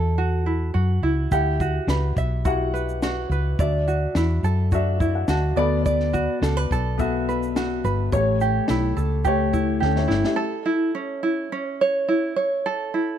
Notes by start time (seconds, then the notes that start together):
Already playing: E2 E4 F#4 A4 D5
0.18 F#4
0.46 E4
0.74 F#2 F#4
1.02 C#2 E4
1.31 D2 E4 G4 F#5, kick, shaker
1.60 F#4, kick, shaker
1.87 C#2 B4, snare, shaker
2.16 B1 E5, kick, shaker
2.45 E4 F#4 G4 F#5, kick, shaker
2.74 B4, shaker
2.89 shaker
3.02 F#4, snare, shaker
3.30 C#2 B4, shaker
3.59 D2 D4 F#4 D5 E5, kick, shaker
3.88 F#4, shaker
4.15 E2 E4, snare, shaker
4.43 F#2 A4, shaker
4.72 D4 F#4 E5, kick, shaker
5.00 E4 E5, kick, shaker
5.15 F#5
5.28 D2 F#4 A5, snare, shaker
5.56 D2 B3 A4 D5 B5, shaker
5.86 D5, kick, shaker
6.00 snare
6.13 F#4, kick, shaker
6.42 C#2 A4, snare, shaker
6.57 B4
6.71 B1 A4, kick, shaker
6.98 B3 F#4 A4 E5, kick, shaker
7.29 B4, shaker
7.43 shaker
7.56 F#4, snare, shaker
7.84 G1 B4, shaker
8.12 A1 A3 G4 C#5, kick, shaker
8.41 G4, shaker
8.68 B1 E4, snare, shaker
8.97 C#2 A4, shaker
9.25 A3 G4 C#5, kick, shaker
9.53 E4, kick, shaker
9.80 D2 C#4 G4 A4, snare
9.96 E4 C#5, snare
10.08 G1 E4, snare
10.24 G4 E5, snare
10.36 A4
10.66 E4
10.95 C#4
11.23 E4
11.52 C#4
11.81 C#5
12.08 E4
12.36 C#5
12.66 A4
12.94 E4